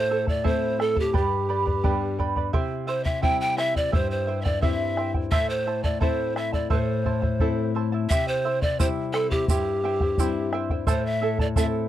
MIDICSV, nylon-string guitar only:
0, 0, Header, 1, 2, 480
1, 0, Start_track
1, 0, Tempo, 694444
1, 793, Time_signature, 2, 2, 24, 8
1, 8215, End_track
2, 0, Start_track
2, 0, Title_t, "Nylon-string guitar"
2, 0, Program_c, 0, 24
2, 0, Note_on_c, 0, 45, 61
2, 310, Note_on_c, 0, 57, 45
2, 312, Note_on_c, 0, 60, 43
2, 316, Note_on_c, 0, 64, 47
2, 767, Note_off_c, 0, 45, 0
2, 778, Note_off_c, 0, 57, 0
2, 779, Note_off_c, 0, 60, 0
2, 781, Note_off_c, 0, 64, 0
2, 792, Note_on_c, 0, 43, 62
2, 1271, Note_on_c, 0, 55, 38
2, 1276, Note_on_c, 0, 59, 37
2, 1277, Note_on_c, 0, 62, 50
2, 1728, Note_off_c, 0, 43, 0
2, 1740, Note_off_c, 0, 55, 0
2, 1741, Note_off_c, 0, 59, 0
2, 1743, Note_off_c, 0, 62, 0
2, 1754, Note_on_c, 0, 48, 59
2, 2230, Note_on_c, 0, 55, 45
2, 2232, Note_on_c, 0, 60, 42
2, 2237, Note_on_c, 0, 64, 43
2, 2689, Note_off_c, 0, 48, 0
2, 2700, Note_off_c, 0, 55, 0
2, 2702, Note_off_c, 0, 60, 0
2, 2703, Note_off_c, 0, 64, 0
2, 2716, Note_on_c, 0, 43, 59
2, 3199, Note_on_c, 0, 55, 39
2, 3201, Note_on_c, 0, 60, 39
2, 3205, Note_on_c, 0, 64, 46
2, 3651, Note_off_c, 0, 43, 0
2, 3665, Note_off_c, 0, 55, 0
2, 3667, Note_off_c, 0, 60, 0
2, 3668, Note_off_c, 0, 64, 0
2, 3682, Note_on_c, 0, 45, 67
2, 4161, Note_on_c, 0, 57, 41
2, 4164, Note_on_c, 0, 60, 40
2, 4166, Note_on_c, 0, 64, 45
2, 4614, Note_off_c, 0, 45, 0
2, 4626, Note_off_c, 0, 57, 0
2, 4627, Note_off_c, 0, 60, 0
2, 4629, Note_off_c, 0, 64, 0
2, 4642, Note_on_c, 0, 45, 60
2, 5118, Note_on_c, 0, 57, 41
2, 5121, Note_on_c, 0, 60, 41
2, 5125, Note_on_c, 0, 64, 46
2, 5573, Note_off_c, 0, 45, 0
2, 5584, Note_off_c, 0, 57, 0
2, 5586, Note_off_c, 0, 60, 0
2, 5587, Note_off_c, 0, 64, 0
2, 5601, Note_on_c, 0, 48, 62
2, 6083, Note_on_c, 0, 55, 44
2, 6084, Note_on_c, 0, 60, 39
2, 6087, Note_on_c, 0, 64, 48
2, 6532, Note_off_c, 0, 48, 0
2, 6546, Note_off_c, 0, 60, 0
2, 6547, Note_off_c, 0, 55, 0
2, 6548, Note_off_c, 0, 64, 0
2, 6568, Note_on_c, 0, 43, 65
2, 7040, Note_on_c, 0, 55, 44
2, 7046, Note_on_c, 0, 60, 43
2, 7048, Note_on_c, 0, 64, 45
2, 7494, Note_off_c, 0, 43, 0
2, 7504, Note_off_c, 0, 55, 0
2, 7506, Note_off_c, 0, 60, 0
2, 7508, Note_off_c, 0, 64, 0
2, 7524, Note_on_c, 0, 45, 60
2, 7992, Note_on_c, 0, 57, 46
2, 7995, Note_on_c, 0, 60, 40
2, 7999, Note_on_c, 0, 64, 46
2, 8215, Note_off_c, 0, 45, 0
2, 8215, Note_off_c, 0, 57, 0
2, 8215, Note_off_c, 0, 60, 0
2, 8215, Note_off_c, 0, 64, 0
2, 8215, End_track
0, 0, End_of_file